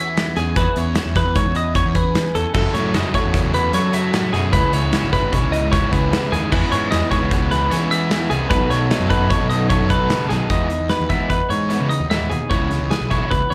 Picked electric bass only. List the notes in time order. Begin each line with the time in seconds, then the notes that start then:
Already playing: E3
0.37 E2
0.56 E2
0.77 E2
1.06 E2
1.16 E2
1.25 E2
1.35 G#2
1.45 E2
1.85 E2
1.95 E2
2.35 E2
2.55 F#2
2.74 A2
2.94 F#2
3.14 A2
3.25 E2
3.73 F#3
4.33 F#2
4.53 C#2
4.73 C#2
5.03 G#1
5.13 G#1
5.23 G#1
5.33 B1
5.43 C#2
5.82 G#1
5.92 C#2
6.32 D#2
6.52 E2
6.72 G#2
6.93 E2
7.12 G#2
7.21 C#2
7.71 E3
8.30 C2
8.51 B1
8.70 B1
9.00 F#2
9.11 F#2
9.20 F#2
9.30 A1
9.40 B1
9.81 F#2
9.90 B1
10.30 B1
10.50 E2
10.80 E2
11.00 D#2
11.30 E2
11.50 G#2
11.80 C#3
12.00 D#2
12.30 D#2
12.51 C#2
12.81 C#2
13.01 B1
13.31 C#2
13.51 E2